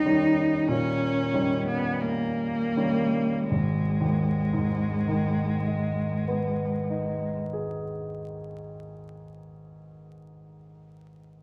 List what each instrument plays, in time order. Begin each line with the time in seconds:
Already playing: grand piano D#2 D#3 G3 C#4, cello D#4
0.05 grand piano D#3 G3 C#4
0.67 grand piano A#2, cello C#4
1.33 grand piano D#3 G3 C#4
1.67 cello B3
2.01 cello A#3
2.76 grand piano D#3 G3 C#4
3.48 grand piano G#1, cello G#3
4.01 grand piano D#2
4.53 grand piano G#2
5.08 grand piano D#3
5.66 grand piano G#3
6.28 grand piano B3
6.90 grand piano D#4
7.53 grand piano G#4